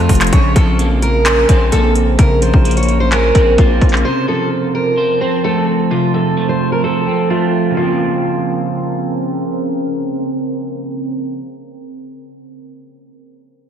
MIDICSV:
0, 0, Header, 1, 6, 480
1, 0, Start_track
1, 0, Key_signature, -5, "minor"
1, 0, Tempo, 465116
1, 336, Time_signature, 4, 2, 24, 8
1, 14135, End_track
2, 0, Start_track
2, 0, Title_t, "Steel-string acoustic guitar"
2, 0, Program_c, 0, 25
2, 0, Note_on_c, 0, 65, 90
2, 307, Note_off_c, 0, 65, 0
2, 336, Note_on_c, 0, 73, 103
2, 546, Note_off_c, 0, 73, 0
2, 578, Note_on_c, 0, 69, 79
2, 787, Note_off_c, 0, 69, 0
2, 1057, Note_on_c, 0, 70, 84
2, 1508, Note_off_c, 0, 70, 0
2, 1538, Note_on_c, 0, 72, 68
2, 1746, Note_off_c, 0, 72, 0
2, 1777, Note_on_c, 0, 69, 90
2, 1986, Note_off_c, 0, 69, 0
2, 2259, Note_on_c, 0, 70, 82
2, 2467, Note_off_c, 0, 70, 0
2, 2499, Note_on_c, 0, 72, 72
2, 2836, Note_off_c, 0, 72, 0
2, 2858, Note_on_c, 0, 73, 67
2, 3067, Note_off_c, 0, 73, 0
2, 3098, Note_on_c, 0, 72, 78
2, 3202, Note_off_c, 0, 72, 0
2, 3219, Note_on_c, 0, 70, 89
2, 3669, Note_off_c, 0, 70, 0
2, 3700, Note_on_c, 0, 65, 79
2, 4149, Note_off_c, 0, 65, 0
2, 4178, Note_on_c, 0, 72, 98
2, 4386, Note_off_c, 0, 72, 0
2, 4419, Note_on_c, 0, 69, 76
2, 4627, Note_off_c, 0, 69, 0
2, 4899, Note_on_c, 0, 70, 78
2, 5349, Note_off_c, 0, 70, 0
2, 5378, Note_on_c, 0, 72, 72
2, 5587, Note_off_c, 0, 72, 0
2, 5618, Note_on_c, 0, 69, 87
2, 5827, Note_off_c, 0, 69, 0
2, 6100, Note_on_c, 0, 65, 80
2, 6308, Note_off_c, 0, 65, 0
2, 6337, Note_on_c, 0, 69, 75
2, 6675, Note_off_c, 0, 69, 0
2, 6698, Note_on_c, 0, 72, 68
2, 6907, Note_off_c, 0, 72, 0
2, 6936, Note_on_c, 0, 70, 78
2, 7041, Note_off_c, 0, 70, 0
2, 7057, Note_on_c, 0, 69, 89
2, 7508, Note_off_c, 0, 69, 0
2, 7537, Note_on_c, 0, 65, 85
2, 7988, Note_off_c, 0, 65, 0
2, 8018, Note_on_c, 0, 65, 80
2, 9416, Note_off_c, 0, 65, 0
2, 14135, End_track
3, 0, Start_track
3, 0, Title_t, "Ambient pad"
3, 0, Program_c, 1, 92
3, 0, Note_on_c, 1, 53, 82
3, 0, Note_on_c, 1, 60, 74
3, 0, Note_on_c, 1, 81, 88
3, 298, Note_off_c, 1, 53, 0
3, 298, Note_off_c, 1, 81, 0
3, 299, Note_off_c, 1, 60, 0
3, 338, Note_on_c, 1, 70, 89
3, 338, Note_on_c, 1, 72, 71
3, 339, Note_on_c, 1, 49, 78
3, 4139, Note_off_c, 1, 49, 0
3, 4139, Note_off_c, 1, 70, 0
3, 4178, Note_on_c, 1, 53, 81
3, 4178, Note_on_c, 1, 81, 87
3, 7976, Note_off_c, 1, 72, 0
3, 7979, Note_off_c, 1, 53, 0
3, 7979, Note_off_c, 1, 81, 0
3, 8015, Note_on_c, 1, 49, 80
3, 8016, Note_on_c, 1, 60, 75
3, 8016, Note_on_c, 1, 70, 89
3, 11835, Note_off_c, 1, 49, 0
3, 11836, Note_off_c, 1, 60, 0
3, 11836, Note_off_c, 1, 70, 0
3, 14135, End_track
4, 0, Start_track
4, 0, Title_t, "Clean electric guitar"
4, 0, Program_c, 2, 27
4, 0, Note_on_c, 2, 57, 91
4, 0, Note_on_c, 2, 60, 81
4, 0, Note_on_c, 2, 72, 87
4, 335, Note_on_c, 2, 49, 92
4, 336, Note_off_c, 2, 60, 0
4, 337, Note_off_c, 2, 57, 0
4, 337, Note_off_c, 2, 72, 0
4, 576, Note_on_c, 2, 53, 81
4, 817, Note_on_c, 2, 58, 77
4, 1297, Note_on_c, 2, 61, 84
4, 1533, Note_off_c, 2, 58, 0
4, 1536, Note_off_c, 2, 49, 0
4, 1537, Note_on_c, 2, 60, 81
4, 1772, Note_off_c, 2, 53, 0
4, 1776, Note_on_c, 2, 58, 91
4, 2259, Note_on_c, 2, 49, 88
4, 2497, Note_off_c, 2, 61, 0
4, 2497, Note_on_c, 2, 53, 72
4, 2723, Note_off_c, 2, 58, 0
4, 2735, Note_on_c, 2, 58, 79
4, 2736, Note_off_c, 2, 60, 0
4, 3217, Note_on_c, 2, 61, 86
4, 3457, Note_on_c, 2, 60, 86
4, 3458, Note_off_c, 2, 49, 0
4, 3686, Note_off_c, 2, 58, 0
4, 3696, Note_off_c, 2, 53, 0
4, 3699, Note_on_c, 2, 58, 86
4, 4176, Note_off_c, 2, 60, 0
4, 4176, Note_on_c, 2, 48, 82
4, 4177, Note_off_c, 2, 58, 0
4, 4177, Note_off_c, 2, 61, 0
4, 4416, Note_on_c, 2, 53, 73
4, 5135, Note_on_c, 2, 72, 80
4, 5375, Note_on_c, 2, 60, 82
4, 5376, Note_off_c, 2, 48, 0
4, 5612, Note_off_c, 2, 53, 0
4, 5616, Note_on_c, 2, 57, 85
4, 6095, Note_on_c, 2, 48, 94
4, 6335, Note_off_c, 2, 72, 0
4, 6337, Note_on_c, 2, 53, 73
4, 6564, Note_off_c, 2, 57, 0
4, 6576, Note_off_c, 2, 60, 0
4, 6576, Note_on_c, 2, 57, 76
4, 7060, Note_on_c, 2, 72, 82
4, 7295, Note_on_c, 2, 60, 77
4, 7296, Note_off_c, 2, 48, 0
4, 7523, Note_off_c, 2, 57, 0
4, 7536, Note_off_c, 2, 53, 0
4, 7536, Note_on_c, 2, 57, 85
4, 7953, Note_on_c, 2, 49, 80
4, 7995, Note_on_c, 2, 53, 79
4, 8016, Note_off_c, 2, 57, 0
4, 8016, Note_off_c, 2, 60, 0
4, 8018, Note_off_c, 2, 72, 0
4, 8036, Note_on_c, 2, 58, 76
4, 8077, Note_on_c, 2, 60, 94
4, 11773, Note_off_c, 2, 49, 0
4, 11815, Note_off_c, 2, 53, 0
4, 11856, Note_off_c, 2, 58, 0
4, 11897, Note_off_c, 2, 60, 0
4, 14135, End_track
5, 0, Start_track
5, 0, Title_t, "808-style bass"
5, 0, Program_c, 3, 38
5, 96, Note_on_c, 3, 29, 101
5, 326, Note_off_c, 3, 29, 0
5, 336, Note_on_c, 3, 34, 109
5, 566, Note_off_c, 3, 34, 0
5, 576, Note_on_c, 3, 34, 103
5, 1498, Note_off_c, 3, 34, 0
5, 1537, Note_on_c, 3, 34, 105
5, 1767, Note_off_c, 3, 34, 0
5, 1778, Note_on_c, 3, 34, 107
5, 2238, Note_off_c, 3, 34, 0
5, 2257, Note_on_c, 3, 34, 108
5, 2602, Note_off_c, 3, 34, 0
5, 2617, Note_on_c, 3, 34, 104
5, 3423, Note_off_c, 3, 34, 0
5, 3457, Note_on_c, 3, 34, 105
5, 3687, Note_off_c, 3, 34, 0
5, 3697, Note_on_c, 3, 34, 111
5, 3927, Note_off_c, 3, 34, 0
5, 3937, Note_on_c, 3, 34, 100
5, 4167, Note_off_c, 3, 34, 0
5, 14135, End_track
6, 0, Start_track
6, 0, Title_t, "Drums"
6, 96, Note_on_c, 9, 36, 92
6, 96, Note_on_c, 9, 42, 47
6, 96, Note_on_c, 9, 46, 85
6, 156, Note_off_c, 9, 42, 0
6, 156, Note_on_c, 9, 42, 59
6, 199, Note_off_c, 9, 36, 0
6, 199, Note_off_c, 9, 46, 0
6, 216, Note_off_c, 9, 42, 0
6, 216, Note_on_c, 9, 39, 95
6, 216, Note_on_c, 9, 42, 70
6, 277, Note_off_c, 9, 42, 0
6, 277, Note_on_c, 9, 42, 79
6, 319, Note_off_c, 9, 39, 0
6, 337, Note_off_c, 9, 42, 0
6, 337, Note_on_c, 9, 36, 110
6, 337, Note_on_c, 9, 42, 84
6, 440, Note_off_c, 9, 36, 0
6, 440, Note_off_c, 9, 42, 0
6, 576, Note_on_c, 9, 36, 94
6, 577, Note_on_c, 9, 42, 70
6, 680, Note_off_c, 9, 36, 0
6, 680, Note_off_c, 9, 42, 0
6, 817, Note_on_c, 9, 42, 74
6, 921, Note_off_c, 9, 42, 0
6, 1057, Note_on_c, 9, 42, 73
6, 1160, Note_off_c, 9, 42, 0
6, 1297, Note_on_c, 9, 42, 77
6, 1298, Note_on_c, 9, 39, 114
6, 1400, Note_off_c, 9, 42, 0
6, 1401, Note_off_c, 9, 39, 0
6, 1537, Note_on_c, 9, 36, 86
6, 1537, Note_on_c, 9, 42, 77
6, 1640, Note_off_c, 9, 36, 0
6, 1640, Note_off_c, 9, 42, 0
6, 1777, Note_on_c, 9, 42, 80
6, 1880, Note_off_c, 9, 42, 0
6, 2017, Note_on_c, 9, 42, 75
6, 2121, Note_off_c, 9, 42, 0
6, 2257, Note_on_c, 9, 36, 111
6, 2258, Note_on_c, 9, 42, 86
6, 2360, Note_off_c, 9, 36, 0
6, 2361, Note_off_c, 9, 42, 0
6, 2497, Note_on_c, 9, 42, 74
6, 2601, Note_off_c, 9, 42, 0
6, 2617, Note_on_c, 9, 36, 89
6, 2720, Note_off_c, 9, 36, 0
6, 2737, Note_on_c, 9, 42, 64
6, 2798, Note_off_c, 9, 42, 0
6, 2798, Note_on_c, 9, 42, 63
6, 2858, Note_off_c, 9, 42, 0
6, 2858, Note_on_c, 9, 42, 66
6, 2918, Note_off_c, 9, 42, 0
6, 2918, Note_on_c, 9, 42, 66
6, 2978, Note_off_c, 9, 42, 0
6, 2978, Note_on_c, 9, 42, 70
6, 3081, Note_off_c, 9, 42, 0
6, 3217, Note_on_c, 9, 39, 112
6, 3217, Note_on_c, 9, 42, 75
6, 3320, Note_off_c, 9, 42, 0
6, 3321, Note_off_c, 9, 39, 0
6, 3456, Note_on_c, 9, 36, 89
6, 3457, Note_on_c, 9, 42, 78
6, 3560, Note_off_c, 9, 36, 0
6, 3560, Note_off_c, 9, 42, 0
6, 3697, Note_on_c, 9, 36, 94
6, 3697, Note_on_c, 9, 42, 75
6, 3800, Note_off_c, 9, 36, 0
6, 3800, Note_off_c, 9, 42, 0
6, 3936, Note_on_c, 9, 36, 87
6, 3937, Note_on_c, 9, 42, 45
6, 4016, Note_off_c, 9, 42, 0
6, 4016, Note_on_c, 9, 42, 59
6, 4040, Note_off_c, 9, 36, 0
6, 4056, Note_on_c, 9, 39, 89
6, 4096, Note_off_c, 9, 42, 0
6, 4096, Note_on_c, 9, 42, 78
6, 4159, Note_off_c, 9, 39, 0
6, 4199, Note_off_c, 9, 42, 0
6, 14135, End_track
0, 0, End_of_file